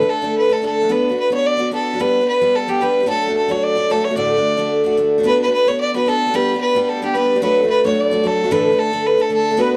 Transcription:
Already playing: fiddle B4
0.01 steel-string acoustic guitar D3 A3 D4 A4
0.10 fiddle A4
0.22 steel-string acoustic guitar D3 A3 D4 A4
0.38 fiddle B4
0.49 steel-string acoustic guitar D3 A3 D4 A4, fiddle A4
0.62 steel-string acoustic guitar D3 A3 D4 A4, fiddle A4
0.82 steel-string acoustic guitar D3 A3 D4 A4
0.89 steel-string acoustic guitar B3 D4 F#4 B4, fiddle B4
1.09 steel-string acoustic guitar D4 F#4 B4
1.19 fiddle B4
1.30 steel-string acoustic guitar B3 D4 F#4 B4, fiddle C#5
1.46 fiddle D5
1.57 steel-string acoustic guitar B3 D4 F#4 B4
1.71 steel-string acoustic guitar B3 D4 F#4 B4, fiddle A4
1.93 steel-string acoustic guitar D4 F#4 B4
2.00 steel-string acoustic guitar G3 B3 D4 G4, fiddle B4
2.21 steel-string acoustic guitar B3 D4 G4
2.28 fiddle B4
2.41 steel-string acoustic guitar G3 B3 D4 G4
2.56 fiddle A4
2.68 steel-string acoustic guitar G3 B3 D4 G4, fiddle G4
2.81 steel-string acoustic guitar G3 B3 D4 G4, fiddle B4
3.00 steel-string acoustic guitar B3 D4 G4
3.06 steel-string acoustic guitar F#3 A3 D4 F#4, fiddle A4
3.27 steel-string acoustic guitar A3 D4 F#4
3.37 fiddle A4
3.48 steel-string acoustic guitar F#3 A3 D4 F#4, fiddle C#5
3.63 fiddle D5
3.75 steel-string acoustic guitar F#3 A3 D4 F#4
3.90 steel-string acoustic guitar F#3 A3 D4 F#4, fiddle A4
4.05 fiddle C#5
4.11 steel-string acoustic guitar A3 D4 F#4
4.16 steel-string acoustic guitar D2 A2 D3 A3 D4 F#4, fiddle D5
4.37 steel-string acoustic guitar D3 A3 D4 F#4
4.57 steel-string acoustic guitar D3 A3 D4 F#4
4.84 steel-string acoustic guitar D3 A3 D4 F#4
4.97 steel-string acoustic guitar D3 A3 D4 F#4
5.18 steel-string acoustic guitar D3 A3 D4 F#4
5.23 steel-string acoustic guitar B3 D4 F#4 B4, fiddle B4
5.42 fiddle B4, steel-string acoustic guitar B4
5.47 steel-string acoustic guitar D4 F#4
5.53 fiddle B4
5.67 steel-string acoustic guitar B3 D4 F#4 B4, fiddle C#5
5.80 fiddle D5
5.94 steel-string acoustic guitar B3 D4 F#4 B4, fiddle B4
6.06 steel-string acoustic guitar B3 D4 F#4 B4, fiddle A4
6.27 steel-string acoustic guitar D4 F#4 B4
6.34 steel-string acoustic guitar G3 B3 D4 G4, fiddle B4
6.54 steel-string acoustic guitar B3 D4 G4
6.61 fiddle B4
6.75 steel-string acoustic guitar G3 B3 D4 G4
6.84 fiddle B4
6.89 fiddle A4
7.02 steel-string acoustic guitar G3 B3 D4 G4, fiddle G4
7.14 steel-string acoustic guitar G3 B3 D4 G4, fiddle B4
7.35 steel-string acoustic guitar B3 D4 G4
7.42 steel-string acoustic guitar F#3 A3 D4 F#4, fiddle B4
7.63 steel-string acoustic guitar A3 D4 F#4
7.70 fiddle B4
7.84 steel-string acoustic guitar F#3 A3 D4 F#4, fiddle C#5
8.00 fiddle D5
8.11 steel-string acoustic guitar F#3 A3 D4 F#4
8.24 steel-string acoustic guitar F#3 A3 D4 F#4, fiddle A4
8.44 steel-string acoustic guitar A3 D4 F#4
8.51 steel-string acoustic guitar A2 D3 E3 A3 D4 A4, fiddle B4
8.72 steel-string acoustic guitar D3 A3 D4 A4
8.79 fiddle A4
8.92 steel-string acoustic guitar D3 A3 D4 A4
9.06 fiddle B4
9.17 steel-string acoustic guitar D3 A3 D4 A4, fiddle A4
9.29 steel-string acoustic guitar D3 A3 D4 A4
9.34 fiddle A4
9.51 steel-string acoustic guitar D3 A3 D4 A4
9.57 steel-string acoustic guitar B3 D4 F#4 B4, flute B4
9.61 fiddle B4
9.73 flute B4

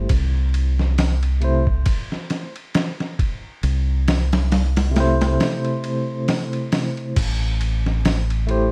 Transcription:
Already playing: tine electric piano C5
0.09 fingered electric bass C2, kick, ride
0.54 ride
0.79 snare
0.98 snare, open hi-hat
1.23 ride
1.40 tine electric piano C3 A3 E4, ride
1.44 tine electric piano C5
1.67 kick
1.86 kick, ride
2.12 snare
2.30 snare, ride
2.56 ride
2.74 snare, ride
3.00 snare
3.19 kick, ride
3.63 fingered electric bass C2, ride
4.08 snare, open hi-hat
4.33 snare, open hi-hat
4.52 snare, open hi-hat
4.76 snare, open hi-hat
4.91 tine electric piano C3 A3
4.96 tine electric piano E4, snare, open hi-hat
5.00 tine electric piano C5
5.21 snare, open hi-hat
5.40 snare, open hi-hat
5.65 ride
5.84 ride
6.28 snare, open hi-hat
6.53 ride
6.72 snare, open hi-hat
6.97 ride
7.16 fingered electric bass A1, kick, crash, ride
7.61 ride
7.86 snare
8.05 snare, open hi-hat
8.30 ride
8.47 tine electric piano A3 E4 G4, ride
8.51 tine electric piano C5

